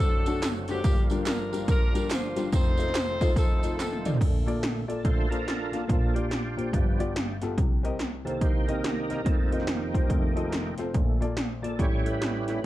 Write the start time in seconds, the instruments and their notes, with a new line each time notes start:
Already playing: grand piano F#1 F#2, tonewheel organ F#2 D3 F#3 A3 C4 F#4, saxophone section C4 D4 A4
0.00 tambourine
0.26 grand piano A3 D4 F#4 A4, closed hi-hat, tambourine
0.42 snare, clap, closed hi-hat, tambourine
0.68 grand piano A3 D4 F#4 C5, saxophone section A#3 D4 G4, snare, closed hi-hat, tambourine
0.83 grand piano G1 G2, tonewheel organ D3 F3 G3 A#3 F4, kick, closed hi-hat, tambourine
1.10 grand piano G3 D4 F4 A#4, closed hi-hat, tambourine
1.26 saxophone section D4 F4 A#4, snare, clap, closed hi-hat, tambourine
1.52 grand piano G3 D4 F4 A#4, closed hi-hat, tambourine
1.68 saxophone section D4 F4 A#4, kick, closed hi-hat, tambourine
1.94 grand piano G3 D4 F4 A#4, closed hi-hat, tambourine
2.10 saxophone section F4 C5, snare, clap, closed hi-hat, tambourine
2.36 grand piano G3 D4 F4 C5, snare, closed hi-hat, tambourine
2.52 grand piano F1 F2, tonewheel organ D#3 A3 C4, saxophone section D#4 A4 C5, kick, closed hi-hat, tambourine
2.77 grand piano A3 D#4 F4 C5, closed hi-hat, tambourine
2.88 snare
2.95 snare, clap, closed hi-hat, tambourine
3.21 grand piano A3 D#4 F4 C5, kick, closed hi-hat, tambourine
3.36 saxophone section C4 D#4 A4, kick, closed hi-hat, tambourine
3.63 grand piano A3 D#4 F4 C5, closed hi-hat, tambourine
3.80 saxophone section C4 D#4 A4, snare, clap, closed hi-hat, tambourine
3.92 high tom
4.05 grand piano A3 D#4 F4 D5, closed hi-hat, mid tom, tambourine
4.14 floor tom
4.20 grand piano A#1 A#2, tonewheel organ A#2 D3 A3, kick, closed hi-hat, crash
4.46 grand piano A#3 F4 A4 D5, closed hi-hat
4.63 snare, closed hi-hat
4.88 grand piano A#3 F4 A4 D5, tonewheel organ A4, closed hi-hat
5.04 tonewheel organ A#2 D3 A3 F4 A4 C5, kick, closed hi-hat
5.29 grand piano A#3 F4 A4 C5, tonewheel organ D4 F4 A#4, closed hi-hat
5.48 snare, closed hi-hat
5.72 grand piano A#3 F4 A4 F5, snare, closed hi-hat
5.87 grand piano A#1 A#2, tonewheel organ A#2 F3 A#3 D4 F4 A4, kick, closed hi-hat
6.14 grand piano A#3 F4 G4 D5, tonewheel organ D4 G4, closed hi-hat
6.31 snare, closed hi-hat
6.57 grand piano A#3 F4 G4 C5, closed hi-hat
6.72 grand piano G1 G2, tonewheel organ G2 F3 B3, kick, closed hi-hat
6.99 grand piano B3 F4 G4 D5, closed hi-hat
7.16 snare, closed hi-hat
7.42 grand piano B3 F4 G4 A4, snare, closed hi-hat
7.58 grand piano C2 C3, kick, closed hi-hat
7.83 grand piano C4 G4 A#4 D#5, closed hi-hat
7.99 snare, closed hi-hat
8.25 tonewheel organ C3 D#3 A#3 A4, grand piano C4 G4 A#4 C5, closed hi-hat
8.41 tonewheel organ D#4 G4 C5, kick, closed hi-hat
8.68 grand piano C4 G4 A#4 D#5, tonewheel organ D#4 G4 A#4, closed hi-hat
8.84 snare, closed hi-hat
9.09 grand piano C4 G4 A#4 D#5, snare, closed hi-hat
9.24 grand piano F1 F2, tonewheel organ F2 D#3 A#3 C4 D#4 A4, kick, closed hi-hat
9.42 tonewheel organ A4
9.51 tonewheel organ A#3 D#4 G4, grand piano C4 F4 A#4 D#5, closed hi-hat
9.60 snare
9.67 snare, closed hi-hat
9.94 grand piano C4 F4 A#4 C5, kick, closed hi-hat
10.07 grand piano F1 F2, tonewheel organ F2 D#3 A3, kick, closed hi-hat
10.36 grand piano C4 F4 A4 D#5, closed hi-hat
10.52 snare, closed hi-hat
10.78 grand piano C4 F4 A4 C5, snare, closed hi-hat
10.94 grand piano A#1 A#2, tonewheel organ A#2 D3 A3, kick, closed hi-hat
11.21 grand piano A#3 F4 A4 D5, closed hi-hat
11.37 snare, closed hi-hat
11.62 grand piano A#3 F4 A4 D5, tonewheel organ A4, closed hi-hat
11.79 grand piano A1 A2, tonewheel organ A2 G3 C#4 E4 G4 C#5, kick, closed hi-hat
12.05 grand piano A3 E4 G4 C#5, tonewheel organ E4 G4 B4, closed hi-hat
12.22 snare, closed hi-hat
12.48 grand piano A3 E4 G4 C#5, snare, closed hi-hat